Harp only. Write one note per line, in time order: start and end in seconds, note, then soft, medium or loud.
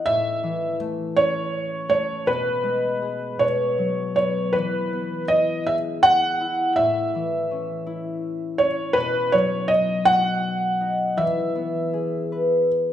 0.00 0.12 E3 medium
0.00 1.15 C#4 soft
0.00 0.50 D#4 soft
0.00 1.60 E4 medium
0.00 0.41 D#5 soft
0.00 1.33 F#5 medium
0.08 2.30 A2 medium
0.43 2.30 E3 medium
0.80 1.89 A3 soft
1.17 4.07 C#4 medium
1.89 2.70 A3 soft
2.26 3.38 B2 medium
2.64 3.44 G#3 medium
3.02 5.29 G#4 soft
3.39 4.58 B2 medium
3.78 4.58 F#3 soft
4.16 4.92 B3 soft
4.55 6.81 E3 medium
4.93 8.03 B3 soft
5.31 6.40 E4 soft
5.67 6.84 G#4 medium
6.41 7.86 E4 medium
6.78 9.01 A2 medium
7.15 9.01 E3 soft
7.51 8.61 C#4 soft
7.87 9.77 E4 medium
8.61 11.51 C#4 soft
8.97 11.23 B2 medium
9.33 11.23 F#3 medium
9.71 10.80 D#4 soft
10.07 12.51 F#4 soft
10.81 11.23 D#4 soft
11.17 12.93 E3 medium
11.55 12.93 B3 medium
11.94 12.93 G#4 soft
12.32 12.93 B4 medium